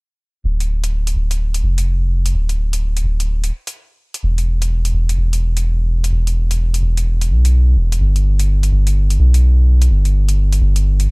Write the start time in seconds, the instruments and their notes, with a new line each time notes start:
0.44 sub bass D1
0.60 closed hi-hat
0.84 closed hi-hat
1.07 closed hi-hat
1.15 sub bass D1
1.31 closed hi-hat
1.54 closed hi-hat
1.63 sub bass F1
1.78 closed hi-hat
2.26 closed hi-hat
2.34 sub bass D1
2.49 closed hi-hat
2.73 closed hi-hat
2.97 closed hi-hat
3.04 sub bass D1
3.20 closed hi-hat
3.44 closed hi-hat
3.67 closed hi-hat
4.14 closed hi-hat
4.23 sub bass E1
4.38 closed hi-hat
4.62 closed hi-hat
4.85 closed hi-hat
4.93 sub bass E1
5.09 closed hi-hat
5.17 sub bass E1
5.33 closed hi-hat
5.57 closed hi-hat
6.04 closed hi-hat
6.12 sub bass E1
6.27 closed hi-hat
6.51 closed hi-hat
6.74 closed hi-hat
6.82 sub bass E1
6.97 closed hi-hat
7.21 closed hi-hat
7.30 sub bass B1
7.45 closed hi-hat
7.76 sub bass E1
7.92 closed hi-hat
8.00 sub bass G1
8.16 closed hi-hat
8.39 closed hi-hat
8.63 closed hi-hat
8.71 sub bass G1
8.87 closed hi-hat
9.10 closed hi-hat
9.19 sub bass B1
9.34 closed hi-hat
9.82 closed hi-hat
9.90 sub bass G1
10.05 closed hi-hat
10.29 closed hi-hat
10.53 closed hi-hat
10.61 sub bass G1
10.76 closed hi-hat
11.00 closed hi-hat